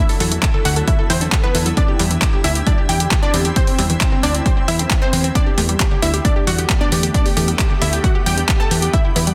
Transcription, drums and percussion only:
0.09 open hi-hat medium
0.20 open hi-hat loud
0.32 closed hi-hat medium
0.43 kick loud
0.43 clap loud
0.43 closed hi-hat medium
0.65 open hi-hat loud
0.76 closed hi-hat medium
0.88 kick loud
0.88 closed hi-hat medium
1.10 open hi-hat loud
1.21 closed hi-hat medium
1.32 kick loud
1.32 clap loud
1.32 closed hi-hat medium
1.55 open hi-hat loud
1.66 closed hi-hat medium
1.77 kick loud
1.77 closed hi-hat medium
1.99 open hi-hat loud
2.11 closed hi-hat medium
2.22 kick loud
2.22 clap loud
2.22 closed hi-hat medium
2.44 open hi-hat loud
2.55 closed hi-hat medium
2.67 kick loud
2.67 closed hi-hat medium
2.89 open hi-hat loud
3.00 closed hi-hat medium
3.11 kick loud
3.11 clap loud
3.11 closed hi-hat medium
3.34 open hi-hat loud
3.45 closed hi-hat medium
3.56 kick loud
3.56 closed hi-hat medium
3.67 open hi-hat medium
3.79 open hi-hat loud
3.90 closed hi-hat medium
4.01 kick loud
4.01 clap loud
4.01 closed hi-hat medium
4.23 open hi-hat loud
4.35 closed hi-hat medium
4.46 kick loud
4.46 closed hi-hat medium
4.68 open hi-hat loud
4.79 closed hi-hat medium
4.91 kick loud
4.91 clap loud
4.91 closed hi-hat medium
5.13 open hi-hat loud
5.24 closed hi-hat medium
5.35 kick loud
5.35 closed hi-hat medium
5.58 open hi-hat loud
5.69 closed hi-hat medium
5.80 kick loud
5.80 clap loud
5.80 closed hi-hat medium
6.03 open hi-hat loud
6.14 closed hi-hat medium
6.25 kick loud
6.25 closed hi-hat medium
6.47 open hi-hat loud
6.58 closed hi-hat medium
6.70 kick loud
6.70 clap loud
6.70 closed hi-hat medium
6.92 open hi-hat loud
7.03 closed hi-hat medium
7.14 kick loud
7.14 closed hi-hat medium
7.26 open hi-hat medium
7.37 open hi-hat loud
7.48 closed hi-hat medium
7.59 kick loud
7.59 clap loud
7.59 closed hi-hat medium
7.82 open hi-hat loud
7.93 closed hi-hat medium
8.04 kick loud
8.04 closed hi-hat medium
8.26 open hi-hat loud
8.38 closed hi-hat medium
8.49 kick loud
8.49 clap loud
8.49 closed hi-hat medium
8.71 open hi-hat loud
8.82 closed hi-hat medium
8.93 kick loud
8.93 closed hi-hat medium
9.16 open hi-hat loud
9.27 closed hi-hat medium

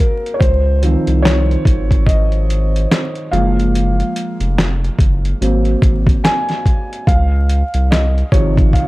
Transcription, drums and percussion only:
0.00 closed hi-hat medium
0.26 closed hi-hat soft
0.41 kick loud
0.41 closed hi-hat medium
0.83 closed hi-hat medium
1.07 closed hi-hat medium
1.25 snare loud
1.25 closed hi-hat medium
1.51 closed hi-hat soft
1.65 kick loud
1.65 closed hi-hat medium
1.91 kick medium
1.91 closed hi-hat soft
2.07 kick medium
2.07 closed hi-hat medium
2.32 closed hi-hat soft
2.50 closed hi-hat medium
2.76 closed hi-hat soft
2.91 snare loud
2.91 closed hi-hat medium
3.15 closed hi-hat soft
3.33 closed hi-hat medium
3.59 closed hi-hat soft
3.75 closed hi-hat medium
4.00 closed hi-hat soft
4.16 closed hi-hat medium
4.41 closed hi-hat soft
4.58 snare loud
4.58 closed hi-hat medium
4.84 closed hi-hat soft
4.99 kick medium
4.99 closed hi-hat medium
5.25 closed hi-hat soft
5.42 closed hi-hat medium
5.65 closed hi-hat soft
5.82 kick loud
5.82 closed hi-hat medium
6.07 kick loud
6.07 closed hi-hat soft
6.25 snare loud
6.25 closed hi-hat medium
6.49 snare soft
6.49 closed hi-hat soft
6.66 kick medium
6.66 closed hi-hat medium
6.93 closed hi-hat soft
7.07 kick loud
7.07 closed hi-hat medium
7.49 closed hi-hat medium
7.74 closed hi-hat medium
7.92 snare loud
7.92 closed hi-hat medium
8.18 closed hi-hat soft
8.32 kick loud
8.32 closed hi-hat medium
8.57 kick medium
8.57 closed hi-hat soft
8.73 kick medium
8.73 closed hi-hat medium

